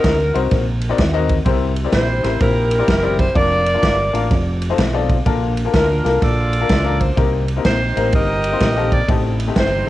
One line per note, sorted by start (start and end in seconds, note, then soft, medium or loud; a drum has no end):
0.00 0.31 D#3 medium
0.00 0.14 C4 medium
0.00 0.14 D#4 medium
0.00 0.14 F#4 medium
0.00 0.48 F#4 medium
0.00 0.14 A#4 medium
0.00 0.52 A#4 loud
0.00 0.14 D#5 medium
0.00 snare loud
0.04 0.30 D2 medium
0.04 kick loud
0.04 ride medium
0.34 0.49 C2 loud
0.34 0.62 C4 medium
0.34 0.62 D#4 medium
0.34 0.62 F#4 medium
0.34 0.62 A#4 medium
0.34 0.63 C5 loud
0.34 ride medium
0.51 0.92 A#1 medium
0.51 kick loud
0.51 snare soft
0.51 ride medium
0.81 ride medium
0.89 0.99 C4 loud
0.89 1.00 D#4 medium
0.89 1.00 F#4 medium
0.89 1.00 A#4 medium
0.89 1.00 D5 loud
0.98 1.39 D#2 medium
0.98 kick loud
0.98 snare loud
0.98 ride medium
1.13 1.34 C4 loud
1.13 1.34 D#4 medium
1.13 1.34 F#4 medium
1.13 1.35 A#4 medium
1.13 1.35 D#5 loud
1.29 kick medium
1.29 ride medium
1.45 1.86 C2 loud
1.45 2.20 C3 medium
1.45 1.70 C4 medium
1.45 1.71 E4 medium
1.45 1.71 G4 medium
1.45 1.71 A#4 medium
1.45 1.71 C5 loud
1.45 kick loud
1.45 ride medium
1.76 ride medium
1.84 2.02 C4 medium
1.84 2.03 E4 medium
1.84 2.03 G4 medium
1.84 2.03 A#4 medium
1.84 2.03 D5 medium
1.92 2.19 A#1 medium
1.92 2.40 E4 medium
1.92 2.40 G4 medium
1.92 2.37 C5 medium
1.92 kick medium
1.92 snare loud
1.92 ride medium
2.23 2.38 A1 medium
2.23 2.51 C4 medium
2.23 2.51 E4 medium
2.23 2.52 G4 medium
2.23 2.52 A#4 medium
2.23 2.52 C5 medium
2.23 snare soft
2.23 ride medium
2.40 2.81 A#1 loud
2.40 3.32 E4 medium
2.40 3.32 G4 medium
2.40 3.19 A#4 loud
2.40 kick loud
2.40 snare soft
2.40 ride medium
2.71 ride medium
2.78 2.89 C4 medium
2.78 2.89 E4 medium
2.78 2.89 G4 medium
2.78 2.89 A#4 medium
2.78 2.89 D5 medium
2.88 3.28 F#1 loud
2.88 kick loud
2.88 snare loud
2.88 ride medium
3.02 3.23 C4 medium
3.02 3.24 E4 medium
3.02 3.24 G4 medium
3.02 3.24 A#4 medium
3.02 3.24 D5 loud
3.19 3.35 C5 loud
3.19 kick loud
3.19 ride medium
3.34 3.76 F1 loud
3.34 3.60 A#3 medium
3.34 3.60 D4 medium
3.34 3.60 F4 medium
3.34 4.27 F4 medium
3.34 3.60 A#4 medium
3.34 4.27 A#4 medium
3.34 3.61 D5 medium
3.34 4.31 D5 loud
3.34 kick loud
3.34 ride medium
3.66 ride medium
3.74 3.92 A#3 medium
3.74 3.93 D4 medium
3.74 3.93 F4 medium
3.74 3.93 A#4 medium
3.74 3.93 D5 medium
3.83 4.09 G1 loud
3.83 kick loud
3.83 snare loud
3.83 ride medium
4.13 4.28 A1 medium
4.13 4.30 A#3 medium
4.13 4.30 D4 medium
4.13 4.31 F4 medium
4.13 4.31 A#4 medium
4.13 4.31 F5 loud
4.13 ride medium
4.30 4.71 F1 loud
4.30 kick loud
4.30 snare soft
4.30 ride medium
4.62 ride medium
4.70 4.80 C4 medium
4.70 4.80 D#4 medium
4.70 4.80 F4 medium
4.70 4.80 A4 medium
4.70 4.80 C5 loud
4.78 5.19 B1 loud
4.78 kick medium
4.78 snare loud
4.78 ride medium
4.93 5.14 C4 medium
4.93 5.14 D#4 medium
4.93 5.15 F4 medium
4.93 5.15 A4 medium
4.93 5.15 D5 loud
5.09 kick loud
5.09 ride medium
5.26 5.67 A#1 loud
5.26 6.01 A#2 medium
5.26 5.51 A#3 medium
5.26 5.51 D4 medium
5.26 5.51 F4 medium
5.26 5.51 A4 medium
5.26 5.52 A#4 loud
5.26 kick loud
5.26 ride medium
5.57 ride medium
5.65 5.83 A#3 medium
5.65 5.83 D4 medium
5.65 5.83 F4 medium
5.65 5.84 A4 medium
5.65 5.84 A#4 medium
5.74 6.00 D2 loud
5.74 6.66 D4 medium
5.74 6.22 F4 medium
5.74 6.19 A#4 medium
5.74 kick loud
5.74 snare loud
5.74 ride medium
6.04 6.19 C2 medium
6.04 6.32 A#3 medium
6.04 6.32 D4 medium
6.04 6.33 F4 medium
6.04 6.33 A4 medium
6.04 6.33 A#4 medium
6.04 snare soft
6.04 ride medium
6.22 6.63 A#1 loud
6.22 7.14 F4 medium
6.22 7.14 A4 medium
6.22 7.01 D5 loud
6.22 kick loud
6.22 snare soft
6.22 ride medium
6.53 ride medium
6.60 6.71 A#3 medium
6.60 6.71 D4 medium
6.60 6.71 F4 medium
6.60 6.71 A4 medium
6.60 6.71 A#4 medium
6.69 7.10 C#2 loud
6.69 kick medium
6.69 snare loud
6.69 ride medium
6.84 7.05 A#3 medium
6.84 7.05 D4 medium
6.84 7.06 F4 medium
6.84 7.06 A4 medium
6.84 7.06 A#4 medium
7.00 7.18 C5 medium
7.00 kick medium
7.00 ride medium
7.16 7.58 C2 loud
7.16 7.92 C3 medium
7.16 7.42 A#3 medium
7.16 7.42 C4 medium
7.16 7.43 D#4 medium
7.16 7.43 G4 medium
7.16 7.43 A#4 medium
7.16 kick loud
7.16 ride medium
7.48 ride medium
7.56 7.75 A#3 medium
7.56 7.75 C4 medium
7.56 7.75 D#4 medium
7.56 7.75 G4 medium
7.56 7.76 A#4 medium
7.65 7.91 A#1 medium
7.65 8.58 D#4 medium
7.65 8.14 G4 medium
7.65 8.10 C5 medium
7.65 kick medium
7.65 snare loud
7.65 ride medium
7.96 8.11 A1 loud
7.96 8.24 A#3 medium
7.96 8.24 C4 medium
7.96 8.24 D#4 medium
7.96 8.25 G4 medium
7.96 8.25 A#4 medium
7.96 ride medium
8.12 8.54 G1 medium
8.12 9.06 G4 medium
8.12 9.06 A#4 medium
8.12 8.92 D#5 loud
8.12 kick loud
8.12 ride medium
8.44 ride medium
8.52 8.62 A#3 medium
8.52 8.62 C4 medium
8.52 8.62 D#4 medium
8.52 8.63 G4 medium
8.52 8.63 C5 medium
8.60 9.02 A#1 loud
8.60 kick loud
8.60 snare loud
8.60 ride medium
8.76 8.97 A#3 medium
8.76 8.97 C4 medium
8.76 8.97 D#4 medium
8.76 8.97 G4 medium
8.76 8.98 A4 medium
8.92 9.09 D5 loud
8.92 kick loud
8.92 ride medium
9.08 9.49 A1 loud
9.08 9.84 A2 medium
9.08 9.34 A3 medium
9.08 9.34 C4 medium
9.08 9.34 D#4 medium
9.08 9.34 G4 medium
9.08 9.34 A4 medium
9.08 kick loud
9.08 ride medium
9.40 ride medium
9.47 9.66 A3 medium
9.47 9.66 C4 medium
9.47 9.66 D#4 medium
9.47 9.66 G4 medium
9.47 9.67 C5 medium
9.56 9.83 G1 loud
9.56 9.89 D#4 medium
9.56 9.89 G4 medium
9.56 9.89 C5 medium
9.56 kick medium
9.56 snare loud
9.56 ride medium